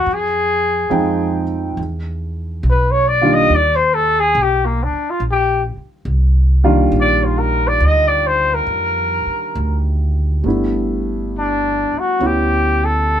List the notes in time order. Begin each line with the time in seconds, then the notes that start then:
Already playing: F#4
0.06 F2
0.13 G#4
0.90 F2 F3 G#3 C4 D#4 G5
1.77 E2
2.63 B1
2.70 B4
2.91 C#5
3.08 D5
3.21 D#3 G3 A#3 D4 F4
3.34 D#5
3.50 D#2
3.55 D5
3.76 C5
3.94 A4
4.20 G#4
4.35 B1
4.42 G4
4.65 A#3
4.83 D4
4.93 muted upright bass stroke
5.10 F4
5.20 A#1
5.31 G4
5.77 muted upright bass stroke
6.05 C2
6.64 D#3 G3 A#3 D4 F4
6.92 A#1
7.00 D5
7.25 F4
7.39 A#4
7.67 D5
7.80 D2
7.85 D#5
8.08 D5
8.27 C5
8.54 A#4
8.67 F2
9.26 muted upright bass stroke
9.55 D2
10.43 G1 G3 A3 B3 D4
10.48 E4
11.38 D4
11.93 muted upright bass stroke
11.99 F#4
12.20 D2 B3 C#4 E4
12.26 G4
12.85 A4